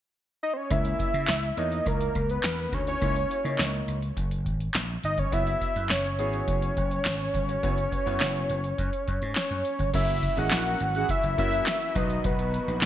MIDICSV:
0, 0, Header, 1, 7, 480
1, 0, Start_track
1, 0, Tempo, 576923
1, 589, Time_signature, 4, 2, 24, 8
1, 10696, End_track
2, 0, Start_track
2, 0, Title_t, "Analog synth lead"
2, 0, Program_c, 0, 81
2, 357, Note_on_c, 0, 75, 102
2, 445, Note_on_c, 0, 72, 69
2, 457, Note_off_c, 0, 75, 0
2, 472, Note_on_c, 0, 73, 92
2, 485, Note_off_c, 0, 72, 0
2, 594, Note_on_c, 0, 76, 112
2, 607, Note_off_c, 0, 73, 0
2, 1318, Note_on_c, 0, 75, 95
2, 1331, Note_off_c, 0, 76, 0
2, 1559, Note_on_c, 0, 70, 98
2, 1572, Note_off_c, 0, 75, 0
2, 1918, Note_on_c, 0, 71, 93
2, 1930, Note_off_c, 0, 70, 0
2, 2282, Note_on_c, 0, 73, 89
2, 2295, Note_off_c, 0, 71, 0
2, 2392, Note_off_c, 0, 73, 0
2, 2397, Note_on_c, 0, 73, 81
2, 3079, Note_off_c, 0, 73, 0
2, 4199, Note_on_c, 0, 75, 98
2, 4319, Note_on_c, 0, 73, 97
2, 4332, Note_off_c, 0, 75, 0
2, 4438, Note_on_c, 0, 76, 112
2, 4450, Note_off_c, 0, 73, 0
2, 4673, Note_off_c, 0, 76, 0
2, 4680, Note_on_c, 0, 76, 102
2, 4918, Note_on_c, 0, 73, 105
2, 4931, Note_off_c, 0, 76, 0
2, 5153, Note_off_c, 0, 73, 0
2, 5157, Note_on_c, 0, 73, 100
2, 7760, Note_off_c, 0, 73, 0
2, 7794, Note_on_c, 0, 73, 88
2, 8238, Note_off_c, 0, 73, 0
2, 8277, Note_on_c, 0, 76, 114
2, 8641, Note_on_c, 0, 78, 105
2, 8653, Note_off_c, 0, 76, 0
2, 9115, Note_off_c, 0, 78, 0
2, 9119, Note_on_c, 0, 78, 99
2, 9239, Note_on_c, 0, 76, 109
2, 9251, Note_off_c, 0, 78, 0
2, 9474, Note_off_c, 0, 76, 0
2, 9478, Note_on_c, 0, 76, 113
2, 9959, Note_on_c, 0, 75, 100
2, 9972, Note_off_c, 0, 76, 0
2, 10197, Note_on_c, 0, 71, 88
2, 10210, Note_off_c, 0, 75, 0
2, 10673, Note_off_c, 0, 71, 0
2, 10696, End_track
3, 0, Start_track
3, 0, Title_t, "Analog polysynth"
3, 0, Program_c, 1, 90
3, 8627, Note_on_c, 1, 68, 79
3, 8628, Note_on_c, 1, 64, 83
3, 8629, Note_on_c, 1, 61, 77
3, 8724, Note_off_c, 1, 68, 0
3, 8725, Note_off_c, 1, 61, 0
3, 8725, Note_off_c, 1, 64, 0
3, 8752, Note_on_c, 1, 64, 95
3, 8752, Note_on_c, 1, 70, 99
3, 8753, Note_on_c, 1, 66, 92
3, 8847, Note_off_c, 1, 64, 0
3, 8847, Note_off_c, 1, 66, 0
3, 8847, Note_off_c, 1, 70, 0
3, 8873, Note_on_c, 1, 66, 76
3, 8875, Note_on_c, 1, 64, 78
3, 8875, Note_on_c, 1, 70, 88
3, 8967, Note_off_c, 1, 66, 0
3, 8968, Note_off_c, 1, 70, 0
3, 8969, Note_off_c, 1, 64, 0
3, 9115, Note_on_c, 1, 64, 102
3, 9116, Note_on_c, 1, 61, 91
3, 9116, Note_on_c, 1, 68, 114
3, 9208, Note_off_c, 1, 64, 0
3, 9209, Note_off_c, 1, 61, 0
3, 9209, Note_off_c, 1, 68, 0
3, 9468, Note_on_c, 1, 66, 89
3, 9469, Note_on_c, 1, 70, 94
3, 9470, Note_on_c, 1, 64, 81
3, 9565, Note_off_c, 1, 66, 0
3, 9565, Note_off_c, 1, 70, 0
3, 9566, Note_off_c, 1, 64, 0
3, 10551, Note_on_c, 1, 63, 86
3, 10551, Note_on_c, 1, 71, 90
3, 10552, Note_on_c, 1, 66, 85
3, 10646, Note_off_c, 1, 63, 0
3, 10646, Note_off_c, 1, 71, 0
3, 10647, Note_off_c, 1, 66, 0
3, 10670, Note_on_c, 1, 70, 96
3, 10670, Note_on_c, 1, 73, 109
3, 10696, Note_off_c, 1, 70, 0
3, 10696, Note_off_c, 1, 73, 0
3, 10696, End_track
4, 0, Start_track
4, 0, Title_t, "Grand piano"
4, 0, Program_c, 2, 0
4, 585, Note_on_c, 2, 58, 68
4, 586, Note_on_c, 2, 61, 60
4, 589, Note_on_c, 2, 64, 61
4, 591, Note_on_c, 2, 73, 77
4, 902, Note_off_c, 2, 58, 0
4, 903, Note_off_c, 2, 61, 0
4, 905, Note_off_c, 2, 64, 0
4, 906, Note_off_c, 2, 73, 0
4, 1305, Note_on_c, 2, 58, 71
4, 1308, Note_on_c, 2, 63, 68
4, 1310, Note_on_c, 2, 64, 68
4, 1312, Note_on_c, 2, 73, 84
4, 1728, Note_off_c, 2, 58, 0
4, 1729, Note_off_c, 2, 63, 0
4, 1730, Note_off_c, 2, 64, 0
4, 1731, Note_off_c, 2, 73, 0
4, 2386, Note_on_c, 2, 64, 41
4, 2394, Note_on_c, 2, 73, 45
4, 2440, Note_off_c, 2, 64, 0
4, 2444, Note_off_c, 2, 73, 0
4, 2504, Note_on_c, 2, 58, 70
4, 2506, Note_on_c, 2, 63, 62
4, 2507, Note_on_c, 2, 64, 61
4, 2509, Note_on_c, 2, 73, 80
4, 2612, Note_off_c, 2, 58, 0
4, 2613, Note_off_c, 2, 63, 0
4, 2613, Note_off_c, 2, 64, 0
4, 2614, Note_off_c, 2, 73, 0
4, 2741, Note_on_c, 2, 64, 44
4, 2748, Note_on_c, 2, 66, 46
4, 2798, Note_off_c, 2, 64, 0
4, 2801, Note_off_c, 2, 66, 0
4, 2862, Note_on_c, 2, 58, 68
4, 2863, Note_on_c, 2, 63, 67
4, 2866, Note_on_c, 2, 64, 63
4, 2869, Note_on_c, 2, 73, 75
4, 3286, Note_off_c, 2, 58, 0
4, 3287, Note_off_c, 2, 63, 0
4, 3289, Note_off_c, 2, 64, 0
4, 3290, Note_off_c, 2, 73, 0
4, 4427, Note_on_c, 2, 59, 69
4, 4429, Note_on_c, 2, 64, 66
4, 4431, Note_on_c, 2, 66, 68
4, 4432, Note_on_c, 2, 73, 72
4, 4744, Note_off_c, 2, 59, 0
4, 4745, Note_off_c, 2, 64, 0
4, 4745, Note_off_c, 2, 66, 0
4, 4746, Note_off_c, 2, 73, 0
4, 5147, Note_on_c, 2, 59, 72
4, 5148, Note_on_c, 2, 64, 67
4, 5152, Note_on_c, 2, 66, 67
4, 5153, Note_on_c, 2, 68, 80
4, 5569, Note_off_c, 2, 59, 0
4, 5569, Note_off_c, 2, 64, 0
4, 5571, Note_off_c, 2, 66, 0
4, 5572, Note_off_c, 2, 68, 0
4, 6226, Note_on_c, 2, 66, 49
4, 6234, Note_on_c, 2, 73, 54
4, 6280, Note_off_c, 2, 66, 0
4, 6284, Note_off_c, 2, 73, 0
4, 6348, Note_on_c, 2, 59, 80
4, 6350, Note_on_c, 2, 64, 74
4, 6352, Note_on_c, 2, 66, 73
4, 6355, Note_on_c, 2, 73, 91
4, 6454, Note_off_c, 2, 59, 0
4, 6455, Note_off_c, 2, 64, 0
4, 6455, Note_off_c, 2, 66, 0
4, 6457, Note_off_c, 2, 73, 0
4, 6588, Note_on_c, 2, 66, 51
4, 6595, Note_on_c, 2, 71, 53
4, 6641, Note_off_c, 2, 66, 0
4, 6644, Note_off_c, 2, 71, 0
4, 6706, Note_on_c, 2, 59, 84
4, 6706, Note_on_c, 2, 64, 74
4, 6709, Note_on_c, 2, 66, 74
4, 6712, Note_on_c, 2, 73, 91
4, 7128, Note_off_c, 2, 59, 0
4, 7128, Note_off_c, 2, 64, 0
4, 7130, Note_off_c, 2, 66, 0
4, 7131, Note_off_c, 2, 73, 0
4, 8265, Note_on_c, 2, 58, 80
4, 8267, Note_on_c, 2, 61, 67
4, 8268, Note_on_c, 2, 64, 67
4, 8271, Note_on_c, 2, 66, 72
4, 8272, Note_on_c, 2, 73, 89
4, 8425, Note_off_c, 2, 58, 0
4, 8426, Note_off_c, 2, 61, 0
4, 8426, Note_off_c, 2, 64, 0
4, 8428, Note_off_c, 2, 66, 0
4, 8428, Note_off_c, 2, 73, 0
4, 8624, Note_on_c, 2, 58, 70
4, 8626, Note_on_c, 2, 61, 69
4, 8626, Note_on_c, 2, 64, 66
4, 8627, Note_on_c, 2, 66, 70
4, 8630, Note_on_c, 2, 75, 77
4, 8995, Note_off_c, 2, 58, 0
4, 8996, Note_off_c, 2, 61, 0
4, 8996, Note_off_c, 2, 64, 0
4, 8996, Note_off_c, 2, 66, 0
4, 8998, Note_off_c, 2, 75, 0
4, 9463, Note_on_c, 2, 58, 79
4, 9465, Note_on_c, 2, 61, 70
4, 9468, Note_on_c, 2, 64, 74
4, 9469, Note_on_c, 2, 66, 73
4, 9469, Note_on_c, 2, 73, 86
4, 9782, Note_off_c, 2, 58, 0
4, 9783, Note_off_c, 2, 61, 0
4, 9784, Note_off_c, 2, 64, 0
4, 9785, Note_off_c, 2, 66, 0
4, 9785, Note_off_c, 2, 73, 0
4, 9944, Note_on_c, 2, 54, 81
4, 9946, Note_on_c, 2, 59, 74
4, 9949, Note_on_c, 2, 63, 78
4, 9949, Note_on_c, 2, 66, 76
4, 9952, Note_on_c, 2, 71, 89
4, 10696, Note_off_c, 2, 54, 0
4, 10696, Note_off_c, 2, 59, 0
4, 10696, Note_off_c, 2, 63, 0
4, 10696, Note_off_c, 2, 66, 0
4, 10696, Note_off_c, 2, 71, 0
4, 10696, End_track
5, 0, Start_track
5, 0, Title_t, "Analog synth pad"
5, 0, Program_c, 3, 89
5, 8267, Note_on_c, 3, 54, 66
5, 8267, Note_on_c, 3, 66, 80
5, 8268, Note_on_c, 3, 52, 73
5, 8269, Note_on_c, 3, 61, 66
5, 9931, Note_off_c, 3, 52, 0
5, 9932, Note_off_c, 3, 61, 0
5, 9945, Note_on_c, 3, 47, 73
5, 9946, Note_on_c, 3, 51, 81
5, 10696, Note_off_c, 3, 47, 0
5, 10696, Note_off_c, 3, 51, 0
5, 10696, Note_off_c, 3, 54, 0
5, 10696, Note_off_c, 3, 66, 0
5, 10696, End_track
6, 0, Start_track
6, 0, Title_t, "Slap bass"
6, 0, Program_c, 4, 36
6, 587, Note_on_c, 4, 37, 95
6, 770, Note_off_c, 4, 37, 0
6, 947, Note_on_c, 4, 49, 84
6, 1039, Note_off_c, 4, 49, 0
6, 1068, Note_on_c, 4, 37, 82
6, 1251, Note_off_c, 4, 37, 0
6, 1308, Note_on_c, 4, 40, 80
6, 1491, Note_off_c, 4, 40, 0
6, 1548, Note_on_c, 4, 37, 86
6, 1731, Note_off_c, 4, 37, 0
6, 1792, Note_on_c, 4, 37, 91
6, 1973, Note_off_c, 4, 37, 0
6, 2028, Note_on_c, 4, 40, 96
6, 2210, Note_off_c, 4, 40, 0
6, 2266, Note_on_c, 4, 38, 88
6, 2449, Note_off_c, 4, 38, 0
6, 2509, Note_on_c, 4, 37, 95
6, 2691, Note_off_c, 4, 37, 0
6, 2867, Note_on_c, 4, 49, 78
6, 2959, Note_off_c, 4, 49, 0
6, 2987, Note_on_c, 4, 37, 86
6, 3170, Note_off_c, 4, 37, 0
6, 3226, Note_on_c, 4, 37, 72
6, 3410, Note_off_c, 4, 37, 0
6, 3468, Note_on_c, 4, 30, 90
6, 3712, Note_off_c, 4, 30, 0
6, 3712, Note_on_c, 4, 32, 82
6, 3893, Note_off_c, 4, 32, 0
6, 3949, Note_on_c, 4, 34, 91
6, 4131, Note_off_c, 4, 34, 0
6, 4190, Note_on_c, 4, 31, 89
6, 4372, Note_off_c, 4, 31, 0
6, 4430, Note_on_c, 4, 30, 103
6, 4612, Note_off_c, 4, 30, 0
6, 4792, Note_on_c, 4, 42, 77
6, 4908, Note_on_c, 4, 30, 93
6, 4921, Note_off_c, 4, 42, 0
6, 5148, Note_off_c, 4, 30, 0
6, 5148, Note_on_c, 4, 32, 87
6, 5331, Note_off_c, 4, 32, 0
6, 5389, Note_on_c, 4, 30, 91
6, 5571, Note_off_c, 4, 30, 0
6, 5632, Note_on_c, 4, 30, 84
6, 5813, Note_off_c, 4, 30, 0
6, 5871, Note_on_c, 4, 32, 89
6, 6052, Note_off_c, 4, 32, 0
6, 6109, Note_on_c, 4, 31, 83
6, 6291, Note_off_c, 4, 31, 0
6, 6351, Note_on_c, 4, 30, 111
6, 6532, Note_off_c, 4, 30, 0
6, 6711, Note_on_c, 4, 42, 80
6, 6801, Note_off_c, 4, 42, 0
6, 6832, Note_on_c, 4, 30, 92
6, 7013, Note_off_c, 4, 30, 0
6, 7070, Note_on_c, 4, 30, 85
6, 7252, Note_off_c, 4, 30, 0
6, 7308, Note_on_c, 4, 42, 97
6, 7400, Note_off_c, 4, 42, 0
6, 7552, Note_on_c, 4, 42, 90
6, 7642, Note_off_c, 4, 42, 0
6, 7671, Note_on_c, 4, 44, 85
6, 7761, Note_off_c, 4, 44, 0
6, 7910, Note_on_c, 4, 42, 85
6, 8001, Note_off_c, 4, 42, 0
6, 8147, Note_on_c, 4, 31, 74
6, 8239, Note_off_c, 4, 31, 0
6, 8268, Note_on_c, 4, 30, 101
6, 8542, Note_off_c, 4, 30, 0
6, 8630, Note_on_c, 4, 32, 83
6, 8721, Note_off_c, 4, 32, 0
6, 8752, Note_on_c, 4, 34, 103
6, 8933, Note_off_c, 4, 34, 0
6, 8990, Note_on_c, 4, 32, 89
6, 9172, Note_off_c, 4, 32, 0
6, 9349, Note_on_c, 4, 30, 102
6, 9440, Note_off_c, 4, 30, 0
6, 9469, Note_on_c, 4, 42, 102
6, 9651, Note_off_c, 4, 42, 0
6, 9946, Note_on_c, 4, 35, 99
6, 10129, Note_off_c, 4, 35, 0
6, 10188, Note_on_c, 4, 35, 109
6, 10461, Note_off_c, 4, 35, 0
6, 10548, Note_on_c, 4, 34, 86
6, 10639, Note_off_c, 4, 34, 0
6, 10665, Note_on_c, 4, 35, 98
6, 10696, Note_off_c, 4, 35, 0
6, 10696, End_track
7, 0, Start_track
7, 0, Title_t, "Drums"
7, 587, Note_on_c, 9, 36, 104
7, 587, Note_on_c, 9, 42, 83
7, 670, Note_off_c, 9, 42, 0
7, 671, Note_off_c, 9, 36, 0
7, 706, Note_on_c, 9, 42, 52
7, 789, Note_off_c, 9, 42, 0
7, 827, Note_on_c, 9, 36, 88
7, 830, Note_on_c, 9, 42, 64
7, 910, Note_off_c, 9, 36, 0
7, 914, Note_off_c, 9, 42, 0
7, 950, Note_on_c, 9, 42, 53
7, 1034, Note_off_c, 9, 42, 0
7, 1064, Note_on_c, 9, 39, 82
7, 1068, Note_on_c, 9, 42, 94
7, 1069, Note_on_c, 9, 38, 97
7, 1147, Note_off_c, 9, 39, 0
7, 1151, Note_off_c, 9, 42, 0
7, 1152, Note_off_c, 9, 38, 0
7, 1189, Note_on_c, 9, 42, 51
7, 1272, Note_off_c, 9, 42, 0
7, 1308, Note_on_c, 9, 42, 64
7, 1392, Note_off_c, 9, 42, 0
7, 1429, Note_on_c, 9, 42, 51
7, 1513, Note_off_c, 9, 42, 0
7, 1547, Note_on_c, 9, 36, 98
7, 1550, Note_on_c, 9, 42, 75
7, 1631, Note_off_c, 9, 36, 0
7, 1633, Note_off_c, 9, 42, 0
7, 1669, Note_on_c, 9, 42, 59
7, 1752, Note_off_c, 9, 42, 0
7, 1791, Note_on_c, 9, 36, 81
7, 1791, Note_on_c, 9, 42, 66
7, 1874, Note_off_c, 9, 36, 0
7, 1874, Note_off_c, 9, 42, 0
7, 1910, Note_on_c, 9, 42, 45
7, 1993, Note_off_c, 9, 42, 0
7, 2027, Note_on_c, 9, 39, 92
7, 2032, Note_on_c, 9, 38, 113
7, 2032, Note_on_c, 9, 42, 91
7, 2110, Note_off_c, 9, 39, 0
7, 2115, Note_off_c, 9, 38, 0
7, 2116, Note_off_c, 9, 42, 0
7, 2152, Note_on_c, 9, 42, 44
7, 2236, Note_off_c, 9, 42, 0
7, 2266, Note_on_c, 9, 36, 86
7, 2269, Note_on_c, 9, 42, 76
7, 2349, Note_off_c, 9, 36, 0
7, 2352, Note_off_c, 9, 42, 0
7, 2389, Note_on_c, 9, 42, 58
7, 2472, Note_off_c, 9, 42, 0
7, 2509, Note_on_c, 9, 36, 103
7, 2510, Note_on_c, 9, 42, 89
7, 2592, Note_off_c, 9, 36, 0
7, 2593, Note_off_c, 9, 42, 0
7, 2630, Note_on_c, 9, 42, 54
7, 2713, Note_off_c, 9, 42, 0
7, 2754, Note_on_c, 9, 42, 68
7, 2837, Note_off_c, 9, 42, 0
7, 2874, Note_on_c, 9, 42, 54
7, 2957, Note_off_c, 9, 42, 0
7, 2984, Note_on_c, 9, 39, 80
7, 2989, Note_on_c, 9, 38, 104
7, 2989, Note_on_c, 9, 42, 98
7, 3068, Note_off_c, 9, 39, 0
7, 3072, Note_off_c, 9, 42, 0
7, 3073, Note_off_c, 9, 38, 0
7, 3109, Note_on_c, 9, 42, 45
7, 3193, Note_off_c, 9, 42, 0
7, 3229, Note_on_c, 9, 42, 68
7, 3313, Note_off_c, 9, 42, 0
7, 3348, Note_on_c, 9, 42, 48
7, 3432, Note_off_c, 9, 42, 0
7, 3468, Note_on_c, 9, 36, 100
7, 3470, Note_on_c, 9, 42, 82
7, 3551, Note_off_c, 9, 36, 0
7, 3553, Note_off_c, 9, 42, 0
7, 3588, Note_on_c, 9, 42, 57
7, 3672, Note_off_c, 9, 42, 0
7, 3711, Note_on_c, 9, 36, 85
7, 3712, Note_on_c, 9, 42, 61
7, 3794, Note_off_c, 9, 36, 0
7, 3795, Note_off_c, 9, 42, 0
7, 3831, Note_on_c, 9, 42, 45
7, 3914, Note_off_c, 9, 42, 0
7, 3948, Note_on_c, 9, 39, 91
7, 3953, Note_on_c, 9, 38, 104
7, 3953, Note_on_c, 9, 42, 89
7, 4031, Note_off_c, 9, 39, 0
7, 4036, Note_off_c, 9, 38, 0
7, 4037, Note_off_c, 9, 42, 0
7, 4072, Note_on_c, 9, 42, 43
7, 4155, Note_off_c, 9, 42, 0
7, 4189, Note_on_c, 9, 42, 69
7, 4272, Note_off_c, 9, 42, 0
7, 4308, Note_on_c, 9, 36, 89
7, 4308, Note_on_c, 9, 42, 58
7, 4391, Note_off_c, 9, 42, 0
7, 4392, Note_off_c, 9, 36, 0
7, 4429, Note_on_c, 9, 36, 108
7, 4429, Note_on_c, 9, 42, 90
7, 4512, Note_off_c, 9, 42, 0
7, 4513, Note_off_c, 9, 36, 0
7, 4550, Note_on_c, 9, 42, 54
7, 4633, Note_off_c, 9, 42, 0
7, 4668, Note_on_c, 9, 36, 84
7, 4672, Note_on_c, 9, 42, 67
7, 4751, Note_off_c, 9, 36, 0
7, 4755, Note_off_c, 9, 42, 0
7, 4793, Note_on_c, 9, 42, 57
7, 4876, Note_off_c, 9, 42, 0
7, 4905, Note_on_c, 9, 39, 78
7, 4910, Note_on_c, 9, 38, 97
7, 4910, Note_on_c, 9, 42, 99
7, 4989, Note_off_c, 9, 39, 0
7, 4993, Note_off_c, 9, 42, 0
7, 4994, Note_off_c, 9, 38, 0
7, 5030, Note_on_c, 9, 42, 52
7, 5113, Note_off_c, 9, 42, 0
7, 5148, Note_on_c, 9, 42, 65
7, 5232, Note_off_c, 9, 42, 0
7, 5268, Note_on_c, 9, 42, 47
7, 5352, Note_off_c, 9, 42, 0
7, 5389, Note_on_c, 9, 36, 102
7, 5390, Note_on_c, 9, 42, 79
7, 5472, Note_off_c, 9, 36, 0
7, 5473, Note_off_c, 9, 42, 0
7, 5511, Note_on_c, 9, 42, 60
7, 5594, Note_off_c, 9, 42, 0
7, 5633, Note_on_c, 9, 36, 87
7, 5633, Note_on_c, 9, 42, 62
7, 5716, Note_off_c, 9, 36, 0
7, 5716, Note_off_c, 9, 42, 0
7, 5752, Note_on_c, 9, 42, 48
7, 5835, Note_off_c, 9, 42, 0
7, 5869, Note_on_c, 9, 39, 87
7, 5874, Note_on_c, 9, 38, 110
7, 5874, Note_on_c, 9, 42, 85
7, 5952, Note_off_c, 9, 39, 0
7, 5957, Note_off_c, 9, 38, 0
7, 5958, Note_off_c, 9, 42, 0
7, 5994, Note_on_c, 9, 42, 43
7, 6077, Note_off_c, 9, 42, 0
7, 6108, Note_on_c, 9, 36, 90
7, 6110, Note_on_c, 9, 42, 77
7, 6191, Note_off_c, 9, 36, 0
7, 6193, Note_off_c, 9, 42, 0
7, 6231, Note_on_c, 9, 42, 60
7, 6314, Note_off_c, 9, 42, 0
7, 6350, Note_on_c, 9, 42, 88
7, 6351, Note_on_c, 9, 36, 112
7, 6434, Note_off_c, 9, 36, 0
7, 6434, Note_off_c, 9, 42, 0
7, 6472, Note_on_c, 9, 42, 52
7, 6555, Note_off_c, 9, 42, 0
7, 6589, Note_on_c, 9, 36, 87
7, 6593, Note_on_c, 9, 42, 62
7, 6673, Note_off_c, 9, 36, 0
7, 6676, Note_off_c, 9, 42, 0
7, 6715, Note_on_c, 9, 42, 55
7, 6798, Note_off_c, 9, 42, 0
7, 6826, Note_on_c, 9, 39, 80
7, 6830, Note_on_c, 9, 42, 97
7, 6831, Note_on_c, 9, 38, 98
7, 6909, Note_off_c, 9, 39, 0
7, 6913, Note_off_c, 9, 42, 0
7, 6914, Note_off_c, 9, 38, 0
7, 6951, Note_on_c, 9, 42, 44
7, 7034, Note_off_c, 9, 42, 0
7, 7069, Note_on_c, 9, 42, 71
7, 7152, Note_off_c, 9, 42, 0
7, 7188, Note_on_c, 9, 42, 49
7, 7271, Note_off_c, 9, 42, 0
7, 7308, Note_on_c, 9, 36, 102
7, 7309, Note_on_c, 9, 42, 80
7, 7391, Note_off_c, 9, 36, 0
7, 7392, Note_off_c, 9, 42, 0
7, 7430, Note_on_c, 9, 42, 58
7, 7513, Note_off_c, 9, 42, 0
7, 7551, Note_on_c, 9, 42, 59
7, 7552, Note_on_c, 9, 36, 84
7, 7635, Note_off_c, 9, 36, 0
7, 7635, Note_off_c, 9, 42, 0
7, 7670, Note_on_c, 9, 42, 46
7, 7753, Note_off_c, 9, 42, 0
7, 7786, Note_on_c, 9, 39, 95
7, 7791, Note_on_c, 9, 38, 111
7, 7791, Note_on_c, 9, 42, 82
7, 7869, Note_off_c, 9, 39, 0
7, 7874, Note_off_c, 9, 38, 0
7, 7874, Note_off_c, 9, 42, 0
7, 7910, Note_on_c, 9, 42, 42
7, 7993, Note_off_c, 9, 42, 0
7, 8028, Note_on_c, 9, 42, 75
7, 8111, Note_off_c, 9, 42, 0
7, 8147, Note_on_c, 9, 36, 87
7, 8147, Note_on_c, 9, 42, 58
7, 8230, Note_off_c, 9, 42, 0
7, 8231, Note_off_c, 9, 36, 0
7, 8267, Note_on_c, 9, 42, 92
7, 8267, Note_on_c, 9, 49, 95
7, 8268, Note_on_c, 9, 36, 112
7, 8350, Note_off_c, 9, 42, 0
7, 8350, Note_off_c, 9, 49, 0
7, 8351, Note_off_c, 9, 36, 0
7, 8388, Note_on_c, 9, 42, 62
7, 8472, Note_off_c, 9, 42, 0
7, 8507, Note_on_c, 9, 36, 93
7, 8510, Note_on_c, 9, 42, 74
7, 8591, Note_off_c, 9, 36, 0
7, 8593, Note_off_c, 9, 42, 0
7, 8631, Note_on_c, 9, 42, 61
7, 8714, Note_off_c, 9, 42, 0
7, 8744, Note_on_c, 9, 39, 94
7, 8748, Note_on_c, 9, 42, 103
7, 8749, Note_on_c, 9, 38, 107
7, 8827, Note_off_c, 9, 39, 0
7, 8832, Note_off_c, 9, 38, 0
7, 8832, Note_off_c, 9, 42, 0
7, 8868, Note_on_c, 9, 42, 54
7, 8951, Note_off_c, 9, 42, 0
7, 8987, Note_on_c, 9, 42, 74
7, 9070, Note_off_c, 9, 42, 0
7, 9109, Note_on_c, 9, 42, 51
7, 9192, Note_off_c, 9, 42, 0
7, 9227, Note_on_c, 9, 36, 110
7, 9228, Note_on_c, 9, 42, 82
7, 9310, Note_off_c, 9, 36, 0
7, 9312, Note_off_c, 9, 42, 0
7, 9347, Note_on_c, 9, 42, 62
7, 9431, Note_off_c, 9, 42, 0
7, 9470, Note_on_c, 9, 36, 93
7, 9471, Note_on_c, 9, 42, 68
7, 9553, Note_off_c, 9, 36, 0
7, 9554, Note_off_c, 9, 42, 0
7, 9589, Note_on_c, 9, 42, 53
7, 9672, Note_off_c, 9, 42, 0
7, 9706, Note_on_c, 9, 39, 93
7, 9711, Note_on_c, 9, 38, 123
7, 9711, Note_on_c, 9, 42, 97
7, 9789, Note_off_c, 9, 39, 0
7, 9794, Note_off_c, 9, 38, 0
7, 9794, Note_off_c, 9, 42, 0
7, 9830, Note_on_c, 9, 42, 47
7, 9913, Note_off_c, 9, 42, 0
7, 9945, Note_on_c, 9, 36, 104
7, 9947, Note_on_c, 9, 42, 79
7, 10028, Note_off_c, 9, 36, 0
7, 10031, Note_off_c, 9, 42, 0
7, 10067, Note_on_c, 9, 42, 60
7, 10150, Note_off_c, 9, 42, 0
7, 10186, Note_on_c, 9, 42, 97
7, 10187, Note_on_c, 9, 36, 125
7, 10269, Note_off_c, 9, 42, 0
7, 10271, Note_off_c, 9, 36, 0
7, 10308, Note_on_c, 9, 42, 57
7, 10391, Note_off_c, 9, 42, 0
7, 10432, Note_on_c, 9, 42, 73
7, 10515, Note_off_c, 9, 42, 0
7, 10552, Note_on_c, 9, 42, 55
7, 10635, Note_off_c, 9, 42, 0
7, 10663, Note_on_c, 9, 39, 88
7, 10667, Note_on_c, 9, 42, 106
7, 10668, Note_on_c, 9, 38, 108
7, 10696, Note_off_c, 9, 38, 0
7, 10696, Note_off_c, 9, 39, 0
7, 10696, Note_off_c, 9, 42, 0
7, 10696, End_track
0, 0, End_of_file